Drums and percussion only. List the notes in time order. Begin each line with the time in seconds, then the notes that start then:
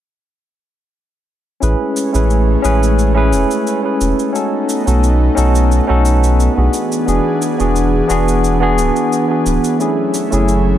1.63 shaker
1.97 shaker
2.15 shaker
2.30 shaker
2.65 shaker
2.83 shaker
2.99 shaker
3.33 shaker
3.51 shaker
3.67 shaker
4.01 shaker
4.19 shaker
4.35 shaker
4.69 shaker
4.88 shaker
5.04 shaker
5.38 shaker
5.55 shaker
5.72 shaker
6.05 shaker
6.24 shaker
6.40 shaker
6.74 shaker
6.92 shaker
7.08 shaker
7.42 shaker
7.60 shaker
7.76 shaker
8.10 shaker
8.28 shaker
8.44 shaker
8.78 shaker
8.96 shaker
9.13 shaker
9.46 shaker
9.64 shaker
9.80 shaker
10.14 shaker
10.32 shaker
10.48 shaker